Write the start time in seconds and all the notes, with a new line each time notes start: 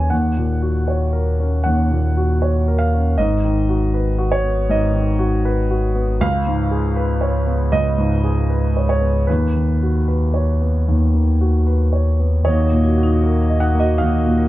Already playing: D#2 D#3 C#4 F#4 B4 C#5 G#5
0.10 D#2 F#5
0.37 A#2
0.62 F#4
0.88 C#5
1.13 A#4
1.40 C#4
1.64 D#2 F#5
1.91 A#2
2.17 F#4
2.42 C#5
2.68 A#4
2.79 F5
2.94 C#4
3.18 G#1 G#2 D#5
3.44 D#3
3.69 F#4
3.94 B4
4.18 F#4
4.32 C#5
4.44 B3
4.69 G#2 D#5
4.93 D#3
5.19 F#4
5.45 B4
5.71 F#4
5.95 B3
6.20 C#2 F5
6.47 G#2
6.71 G#4
6.96 B4
7.21 C#5
7.47 B3
7.72 C#2 D#5
7.98 G#2
8.24 G#4
8.50 B4
8.77 C#5
8.89 C#5
9.01 B3
9.27 D#2 B4
9.56 D#3
9.83 F#4
10.08 B4
10.34 C#5
10.61 B3
10.88 D#2
11.15 D#3
11.41 F#4
11.67 B4
11.93 C#5
12.19 B3
12.43 D#2 A#3 D#4 F#4 C#5 D#5
12.65 C#5
12.72 A#2
12.84 F#4
12.98 F#4
13.03 D#4
13.23 A#4 C#5
13.41 C#5
13.50 D#5
13.60 D#4 F#5
13.75 A#3
13.80 F#4 D#5
13.98 D#2 D#4 F5
14.18 F#4
14.26 A#2
14.38 A#4